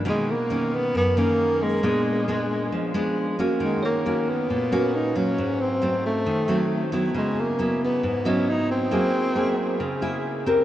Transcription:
<<
  \new Staff \with { instrumentName = "Tine electric piano" } { \time 4/4 \key gis \minor \tempo 4 = 135 r1 | r1 | r8 cis''4. r2 | r1 |
r2 r8 dis''4. | r1 | }
  \new Staff \with { instrumentName = "Tenor saxophone" } { \time 4/4 \key gis \minor gis8 ais4 b8 b8 ais4 gis8~ | gis2. r4 | gis8 ais4 b4. dis'8 cis'8~ | cis'8 bis4 a2 r8 |
gis8 ais4 b4 cis'8 dis'8 bis8~ | bis2~ bis8 r4. | }
  \new Staff \with { instrumentName = "Nylon-string guitar" } { \time 4/4 \key gis \minor << { <dis ais cis'>8 r8 <dis ais cis'>4 r8 <dis ais cis'>4. | <gis b d'>4 <gis b d'>4. <gis b d'>4 <ais cis' fis'>8~ | <ais cis' fis'>4 <ais cis' fis'>4 r8 <ais cis' fis'>4 fis8~ | fis4 <fis a bis>4 r8 <fis a bis>4 <fis b e'>8~ |
<fis b e'>4 <fis b e'>4 r8 <fis b e'>4. | <ais e' gis'>4 <ais e' gis'>4 r8 <ais e' gis'>4 <bis g' ais'>8 | } \\ { b,2 fis,2 | ais,2 eis2 | dis2 ais,2 | gis,2 dis2 |
cis2 gis,2 | fis2 cis2 | } >> }
>>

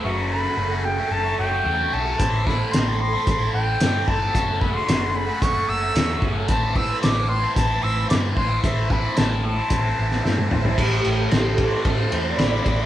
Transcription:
<<
  \new Staff \with { instrumentName = "Flute" } { \time 4/4 \key a \dorian \tempo 4 = 112 e''8 b''4 g''8 a''8 g''4 a''8~ | a''8 b''8 c'''8 c'''4 g''4 a''8~ | a''8 b''16 c'''8. b''8 cis'''8 e'''4 r8 | a''8 e'''8 d'''8 c'''8 a''8 e'''8 d'''8 c'''8 |
e''8 b''8 a''8 a''2 r8 | r1 | }
  \new Staff \with { instrumentName = "String machine" } { \time 4/4 \key a \dorian <a' e'' a''>1 | <a' c'' a''>1 | <a' e'' fis''>1 | <b' c'' a''>1 |
<e'' a''>1 | g'8 a'8 g'16 a'16 a'8 c''8. d''8. e''8 | }
  \new Staff \with { instrumentName = "Overdriven electric guitar" } { \time 4/4 \key a \dorian <fis, cis fis a cis' fis'>8 <fis a cis' fis'>8 <fis, cis fis a cis' fis'>16 <fis a cis' fis'>8 <fis a cis' fis'>8 <fis a cis' fis'>16 <fis a cis' fis'>8 <fis, cis fis a cis' fis'>8 <fis a cis' fis'>16 <fis a cis' fis'>16 | <a, e a c' e'>8 <e a c' e'>8 <a, e a c' e'>16 <a c' e'>8 <a c' e'>8 <a c' e'>16 <e a c' e'>8 <a, e a c' e'>8 <e a c' e'>16 <a c' e'>16 | <fis, cis fis a cis' fis'>8 <fis a cis' fis'>8 <fis, cis fis a cis' fis'>16 <fis a cis' fis'>8 <fis a cis' fis'>8 <fis a cis' fis'>16 <fis a cis' fis'>8 <fis, cis fis a cis' fis'>8 <fis a cis' fis'>16 <fis a cis' fis'>16 | <a, e a c' e'>8 <e a c' e'>8 <a, e a c' e'>16 <a c' e'>8 <a c' e'>8 <a c' e'>16 <e a c' e'>8 <a, e a c' e'>8 <e a c' e'>16 <a c' e'>16 |
<a, e a c' e'>8 <e a c' e'>8 <a, e a c' e'>16 <a c' e'>8 <a c' e'>8 <a c' e'>16 <e a c' e'>8 <a, e a c' e'>8 <e a c' e'>16 <a c' e'>16 | a,4 c'8 e8 a8 c'8 e'8 c'8 | }
  \new Staff \with { instrumentName = "Picked electric bass" } { \clef bass \time 4/4 \key a \dorian fis,,4 fis,,4 fis,,8 fis,,8 e,8 b,,8 | a,,4 a,,4 a,,8 a,,8 g,8 g,,8 | fis,,4 fis,,4 fis,,8 fis,,8 e,8 g,,8 | a,,4 a,,4 a,,8 a,,8 g,8 a,,8 |
a,,4 a,,4 a,,8 a,,8 g,8 a,,8 | a,,8 a,,8 a,,4 a,8 e,8 a,,8 a,,8 | }
  \new DrumStaff \with { instrumentName = "Drums" } \drummode { \time 4/4 r4 r4 r4 r4 | <hh bd>8 <bd sn>8 <hh sn>4 <hh bd>4 <hh sn>8 bd8 | <hh bd>8 bd8 <hh sn>4 <hh bd>4 <hh sn>8 bd8 | <hh bd>8 bd8 <hh sn>4 <hh bd>4 <hh sn>8 bd8 |
<hh bd>8 bd8 <hh sn>4 <hh bd>8. sn16 sn16 tommh16 toml16 tomfh16 | <cymc bd>8 cymr8 <cymr sn>8 <bd cymr>8 <bd cymr>8 cymr8 <cymr sn>8 <bd cymr>8 | }
>>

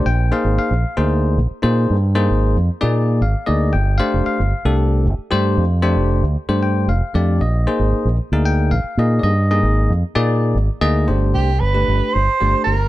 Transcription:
<<
  \new Staff \with { instrumentName = "Soprano saxophone" } { \time 7/8 \key g \phrygian \tempo 4 = 114 r2. r8 | r2. r8 | r2. r8 | r2. r8 |
r2. r8 | r2. r8 | r8 g'8 b'4 c''4 bes'8 | }
  \new Staff \with { instrumentName = "Tine electric piano" } { \time 7/8 \key g \phrygian << { g''8 f''8 f''4 r4. | r2 r8 f''8 ees''8 | g''8 f''8 f''4 r4. | r2 g''8 f''4 |
ees''4. r8 g''8 f''4 | <d'' ees''>4. r2 | r2. r8 | } \\ { r8 <bes ees' aes' c''>8. r8 <bes ees' aes' c''>8. r8 <bes ees' aes' c''>8 | r8 <bes ees' aes' c''>8. r8 <bes ees' aes' d''>8. r8 <bes ees' aes' d''>8 | r8 <a d' g' c''>8. r8 <a d' g' a'>8. r8 <a d' g' c''>8 | r8 <a d' g' c''>8. r8 <a d' g' c''>8. r8 <a d' g' d''>8 |
r8 <bes ees' aes' c''>8. r8 <bes ees' aes' bes'>8. r8 <bes ees' aes' ees''>8 | r8 <bes ees' aes' ees''>8. r8 <bes ees' aes' d''>8. r8 <bes ees' aes' ees''>8 | <a d' g' c''>8. r8 <a d' g' b'>8. r8 <a d' g' c''>8 r8 | } >> }
  \new Staff \with { instrumentName = "Fingered electric bass" } { \clef bass \time 7/8 \key g \phrygian bes,,8 r16 aes,,16 r16 bes,,16 r16 d,8. bes,,16 r16 bes,8 | g,8. aes,,8 f,16 r16 bes,8. aes,,16 r16 d,8 | g,,8 r16 f,,16 r16 g,,16 r16 c,8. g,,16 r16 g,8 | f,8. f,,8 d,16 r16 g,8. f,,16 r16 f,8 |
bes,,8 r16 aes,,16 r16 bes,,16 r16 d,8. bes,,16 r16 bes,8 | g,8. aes,,8 f,16 r16 bes,8. aes,,16 r16 d,8 | g,,8 c,8 g,,8 g,,16 r16 g,,16 r16 g,,16 r16 g,,8 | }
>>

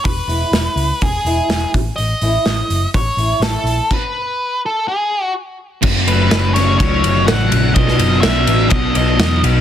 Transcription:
<<
  \new Staff \with { instrumentName = "Lead electric guitar" } { \time 4/4 \key fis \dorian \tempo 4 = 124 b'2 gis'4. r8 | dis''2 cis''4 a'4 | b'4. a'8 gis'4 r4 | r8 b'4 cis''8 cis''4 fis''4 |
dis''4 e''4 dis''8 dis''4 r8 | }
  \new Staff \with { instrumentName = "Steel-string acoustic guitar" } { \time 4/4 \key fis \dorian r8 <e gis b e'>8 e8 r4 <e gis b e'>8 <gis b e'>8 r8 | r8 <e a cis' e'>8 <e cis'>8 r4 <e a cis' e'>8 r4 | r1 | r1 |
r1 | }
  \new Staff \with { instrumentName = "Distorted electric guitar" } { \time 4/4 \key fis \dorian r1 | r1 | r1 | <fis, cis fis a cis'>8 <fis a cis'>8 <cis fis a cis'>8 <fis, cis fis a cis'>8 <cis fis a cis'>8 <fis a cis'>8 <fis, cis fis a cis'>8 <fis a cis'>8 |
<b, fis b dis'>8 <fis b dis'>8 <b, fis b dis'>8 <b, fis b dis'>8 <b, fis b dis'>8 <fis b dis'>8 <b, fis b dis'>8 <fis b dis'>8 | }
  \new Staff \with { instrumentName = "Picked electric bass" } { \clef bass \time 4/4 \key fis \dorian e,,8 e,,8 e,,8 cis,8 e,,8 e,,8 e,,8 a,,8 | a,,8 a,,8 a,,8 fis,,8 a,,8 a,,8 a,,8 ais,,8 | r1 | fis,,4 fis,,4 cis,8 fis,,8 a,,8 ais,,8 |
b,,8 fis,,8 b,,8 a,,8 b,,8 b,,8 r8 b,,8 | }
  \new DrumStaff \with { instrumentName = "Drums" } \drummode { \time 4/4 <hho bd>8 hho8 <hho sn>8 hho8 <hho bd>8 hho8 <hho sn>8 <hho bd>8 | hho8 hho8 <hho sn>8 hho8 <hho bd>8 hho8 <hho sn>8 hho8 | <cymc bd>4 r4 r4 r4 | <cymc bd>8 cymr8 <cymr sn>8 <cymr sn>8 <bd cymr>8 cymr8 <cymr sn>8 cymr8 |
<bd cymr>16 sn16 cymr8 <cymr sn>8 cymr8 <bd cymr>8 cymr8 <cymr sn>8 cymr8 | }
>>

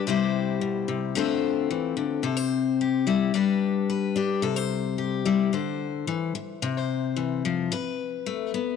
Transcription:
\new Staff \with { instrumentName = "Steel-string acoustic guitar" } { \time 4/4 \key c \major \tempo 4 = 109 << { <g e' g' c''>2 <a c' f' c''>2 | a'16 c''8. g'8 e'8 <d' g' b'>4 b'8 g'8 | a'16 c''8. g'8 e'8 c''2 | r16 c''4.~ c''16 b'2 | } \\ { c4 b,8 c8 d4 e8 d8 | c4. g8 g4. d'8 | c4. g8 d4 e8 r8 | c4 e8 f8 r4 a8 b8 | } >> }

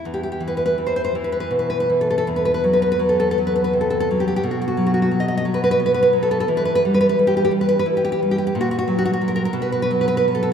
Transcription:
\new Staff \with { instrumentName = "Nylon-string guitar" } { \time 6/8 \key e \minor \tempo 4. = 57 << { r32 g'32 g'32 g'32 r32 b'32 b'32 b'32 r32 c''32 c''32 c''32 r32 b'32 b'32 b'32 r32 b'32 b'32 b'32 r32 a'32 a'32 a'32 | r32 b'32 b'32 b'32 r32 b'32 b'32 b'32 r32 a'32 a'32 a'32 r32 b'32 b'32 b'32 r32 a'32 a'32 a'32 r32 g'32 g'32 g'32 | r32 fis'32 fis'32 fis'32 r32 fis'32 fis'32 fis'32 r32 dis''32 dis''32 dis''32 r32 b'32 b'32 b'32 r32 b'32 b'32 b'32 r32 a'32 a'32 a'32 | r32 b'32 b'32 b'32 r32 b'32 b'32 b'32 r32 g'32 g'32 g'32 r32 b'32 b'32 b'32 r32 g'32 g'32 g'32 r32 g'32 g'32 g'32 |
r32 fis'32 fis'32 fis'32 r32 fis'32 fis'32 fis'32 r32 ais'32 ais'32 ais'32 r32 b'32 b'32 b'32 r32 b'32 b'32 b'32 r32 a'32 a'32 r32 | } \\ { e,8 e8 e8 e8 b,8 e8 | e,8 fis8 fis8 fis8 c8 fis8 | b,8 fis8 fis8 fis8 b8 fis8 | e8 g8 g8 g8 e'8 g8 |
ais,8 fis8 fis8 b,8 fis8 fis8 | } >> }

